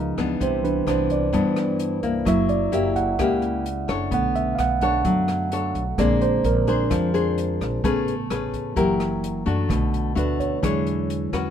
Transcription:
Already playing: upright bass C#2, nylon-string guitar C#3 B3 F4 A#4, tine electric piano F3 B3 D#4
0.18 upright bass C#2, nylon-string guitar E3 B3 D4, kick, cross-stick, closed hi-hat
0.40 upright bass C2, nylon-string guitar C3, tine electric piano C5, kick, closed hi-hat
0.63 tine electric piano E3 B3 D4 B4, closed hi-hat
0.87 upright bass C2, nylon-string guitar E3 B3 D4, tine electric piano C5, cross-stick, closed hi-hat
1.10 tine electric piano D5, kick, closed hi-hat
1.33 nylon-string guitar G2 E3 B3 D4, upright bass G2, kick, closed hi-hat
1.56 cross-stick, closed hi-hat
1.79 closed hi-hat
2.03 upright bass C2, nylon-string guitar A#3 E4, kick, closed hi-hat
2.25 upright bass F#1, nylon-string guitar F#3, tine electric piano A#3 E4 E5, kick, cross-stick, closed hi-hat
2.49 tine electric piano D5, closed hi-hat
2.72 upright bass F#1, nylon-string guitar A#3 E4 G4, tine electric piano E5, closed hi-hat
2.96 tine electric piano F#5, kick, closed hi-hat
3.19 upright bass C#2, nylon-string guitar C#3 A#3 E4 G4, kick, cross-stick, closed hi-hat
3.42 closed hi-hat
3.66 closed hi-hat
3.88 upright bass F#1, nylon-string guitar D4 A4 C#5, kick, cross-stick, closed hi-hat
4.11 upright bass B1, tine electric piano D3 A3 F#5, nylon-string guitar B3, kick, closed hi-hat
4.36 tine electric piano E5, closed hi-hat
4.55 upright bass B1, tine electric piano F5, cross-stick, closed hi-hat
4.60 tine electric piano F#5
4.81 nylon-string guitar D4 A4 C#5, tine electric piano F#5, kick, closed hi-hat
5.05 upright bass F#2, nylon-string guitar F#3, kick, closed hi-hat
5.28 cross-stick, closed hi-hat
5.52 nylon-string guitar D4 A4 C#5, closed hi-hat
5.75 upright bass B1, kick, closed hi-hat
5.98 upright bass A#1, tine electric piano D3 G#3 C4 D5, nylon-string guitar A#3 D4 G#4 C5, kick, cross-stick, closed hi-hat
6.21 tine electric piano C5, closed hi-hat
6.44 upright bass A#1, tine electric piano A#4, closed hi-hat
6.67 nylon-string guitar D4 G#4 C5, tine electric piano G#4, kick, closed hi-hat
6.90 upright bass F2, nylon-string guitar F3, kick, cross-stick, closed hi-hat
7.14 nylon-string guitar D4 G#4 C5, closed hi-hat
7.38 closed hi-hat
7.61 upright bass A#1, kick, cross-stick, closed hi-hat
7.84 upright bass A1, tine electric piano C#3 B3, nylon-string guitar A3 C#4 G#4 B4, kick, closed hi-hat
8.08 closed hi-hat
8.30 upright bass A1, nylon-string guitar C#4 G#4 B4, cross-stick, closed hi-hat
8.54 kick, closed hi-hat
8.76 upright bass F#1, tine electric piano E3 A#3, nylon-string guitar F#3 E4 G4 A#4, kick, closed hi-hat
9.00 cross-stick, closed hi-hat
9.24 closed hi-hat
9.46 upright bass F#2, nylon-string guitar A3 D4 F#4, kick, closed hi-hat
9.69 upright bass B1, nylon-string guitar B2, tine electric piano D3 A3, kick, cross-stick, closed hi-hat
9.94 closed hi-hat
10.15 upright bass D2, nylon-string guitar A3 D4 F#4, tine electric piano B4, closed hi-hat
10.40 tine electric piano C#5, kick, closed hi-hat
10.63 upright bass E2, tine electric piano D3 F#3 G#3, nylon-string guitar E3 D4 G#4 C#5, kick, cross-stick, closed hi-hat
10.87 closed hi-hat
11.10 closed hi-hat
11.33 upright bass E2, nylon-string guitar C#4 F#4 B4, kick, cross-stick, closed hi-hat

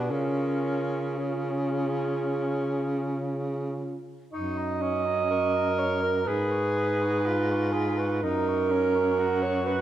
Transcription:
Already playing: baritone saxophone B2, tenor saxophone D4, alto saxophone G4, clarinet B4
0.09 baritone saxophone C#3, tenor saxophone C#4, alto saxophone F4, clarinet A#4
1.18 tenor saxophone C#4, alto saxophone F4, clarinet G#4
4.32 baritone saxophone F#2, tenor saxophone D#4, alto saxophone D#5, clarinet C#6
4.57 clarinet A#5
4.82 tenor saxophone C#4, clarinet C#6
5.05 clarinet A#5
5.30 tenor saxophone A#4, clarinet C#6
5.54 clarinet A#5
5.79 alto saxophone C#5, clarinet C#6
6.02 alto saxophone A#4, clarinet A#5
6.25 baritone saxophone G#2, tenor saxophone G#4, alto saxophone B4, clarinet B5
6.51 clarinet C#6
6.77 clarinet B5
7.02 clarinet C#6
7.26 tenor saxophone F4, clarinet B5
7.51 clarinet C#6
7.72 alto saxophone G#4, clarinet B5
7.97 alto saxophone B4, clarinet C#6
8.22 baritone saxophone F#2, tenor saxophone D#4, alto saxophone A#4, clarinet A#5
8.48 clarinet C#6
8.71 tenor saxophone C#4, clarinet A#5
8.95 clarinet C#6
9.19 tenor saxophone F#4, clarinet A#5
9.43 alto saxophone C#5, clarinet C#6
9.66 alto saxophone B4, clarinet A#5

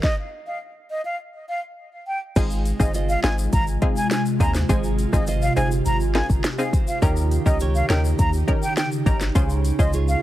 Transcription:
0.03 flute D#5, kick, snare
0.47 flute F5
0.91 flute D#5
1.05 flute F5
1.49 flute F5
2.07 flute G5
2.36 sub bass G#1, ambient pad C3 G#3 F4, nylon-string guitar G#3, synth stab C4 D#4 F4 G#4, kick, closed hi-hat, crash, shaker
2.50 shaker
2.65 closed hi-hat, shaker
2.80 sub bass G1, synth stab C4 D#4 F4 G#4, flute D#5, kick, shaker
2.94 nylon-string guitar F4 C5 D#5, closed hi-hat, shaker
3.09 flute F5, shaker
3.23 sub bass G#1, synth stab C4 D#4 F4 G#4, flute G#5, finger snap, snare, closed hi-hat, shaker
3.39 shaker
3.53 sub bass G#1, flute A#5, kick, closed hi-hat, shaker
3.67 shaker
3.82 synth stab C4 D#4 F4 G#4, kick, closed hi-hat
3.96 flute G#5, shaker
4.11 flute G#5, finger snap, snare, closed hi-hat, shaker
4.26 shaker
4.40 sub bass D#2, synth stab C4 D#4 F4 G#4, nylon-string guitar C5, flute A#5, kick, closed hi-hat, shaker
4.55 snare, shaker
4.69 sub bass G#1, nylon-string guitar G#3, synth stab C4 D#4 F4 G#4, ambient pad G4, kick, closed hi-hat, shaker
4.84 shaker
4.98 closed hi-hat, shaker
5.13 sub bass G#1, synth stab C4 D#4 F4 G#4, flute D#5, kick, shaker
5.27 nylon-string guitar F4 C5 D#5, closed hi-hat, shaker
5.42 flute F5, shaker
5.56 sub bass G1, synth stab C4 D#4 F4 G#4, flute G#5, closed hi-hat, shaker
5.71 shaker
5.86 sub bass G#1, flute A#5, closed hi-hat, shaker
6.00 shaker
6.15 synth stab C4 D#4 F4 G#4, flute G#5, snare, closed hi-hat, high timbale
6.30 sub bass G1, kick, shaker
6.44 finger snap, snare, closed hi-hat, shaker
6.58 synth stab C4 D#4 F4 G#4, flute F5, shaker
6.73 nylon-string guitar C5, kick, closed hi-hat, shaker
6.87 flute F5, shaker
7.02 sub bass D#2, ambient pad C#3 D#4, nylon-string guitar D#3, synth stab C#4 D#4 G4 A#4, kick, closed hi-hat, shaker
7.16 shaker
7.31 closed hi-hat, shaker
7.46 sub bass C#2, synth stab C#4 D#4 G4 A#4, flute D#5, kick, shaker
7.60 nylon-string guitar D#4 G4 C#5, closed hi-hat, shaker
7.75 flute F5, shaker
7.89 sub bass D#2, synth stab C#4 D#4 G4 A#4, flute G5, finger snap, snare, closed hi-hat, shaker
8.05 shaker
8.19 sub bass D#2, flute A#5, kick, closed hi-hat, shaker
8.33 shaker
8.48 synth stab C#4 D#4 G4 A#4, kick, closed hi-hat
8.63 flute G5, shaker
8.77 flute G5, finger snap, snare, closed hi-hat, shaker
8.92 shaker
9.06 sub bass G#1, synth stab C#4 D#4 G4 A#4, nylon-string guitar G4, flute A#5, kick, closed hi-hat, shaker
9.21 snare, shaker
9.35 sub bass C#2, nylon-string guitar C#3, synth stab C#4 F4 G#4 C5, ambient pad C#4 F4, kick, closed hi-hat, shaker
9.50 shaker
9.64 closed hi-hat, shaker
9.79 sub bass C#2, synth stab C#4 F4 G#4 C5, flute D#5, kick, shaker
9.93 nylon-string guitar F4 G#4 C#5, closed hi-hat, shaker
10.08 flute F5, shaker

